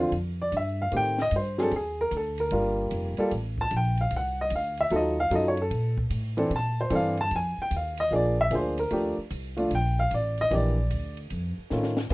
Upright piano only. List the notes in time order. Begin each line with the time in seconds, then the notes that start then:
0.00 D3 F3 C4 F4
0.42 D5
0.57 E5
0.82 F5
0.91 D#3 A3 C4 G4
0.97 G5
1.22 D#5
1.36 C5
1.58 F#3 C4 D4 G#4 A4
1.76 G#4
2.01 A#4
2.17 A4
2.40 A#4
2.52 G3 A#3 F4 A#4
3.18 G3 A#3 F4 A4
3.61 A5
3.77 G5
4.01 F5
4.16 F#5
4.41 D#5
4.55 F5
4.81 E5
4.91 F#3 D#4 F4 A4
4.96 D#5
5.20 F5
5.31 F#3 D#4 F4 A4
5.35 D#5
5.48 C#5
5.62 A4
6.37 E3 C4 D4 A4
6.56 A5
6.81 C5
6.90 E3 C4 D4 A4
6.95 F5
7.21 A5
7.36 G#5
7.62 G5
7.76 F5
8.00 D#5
8.11 F3 A#3 D4 G#4
8.16 D5
8.41 E5
8.51 F3 A#3 D4 G#4
8.55 C5
8.79 A#4
8.91 F3 A3 D4 G4
9.57 F3 A3 D4 F4
9.75 G5
9.99 F5
10.14 D5
10.41 D#5
10.51 E3 A#3 D4 G4
10.55 D5
11.71 D#3 A3 C#4 F4
12.10 C#3 A#3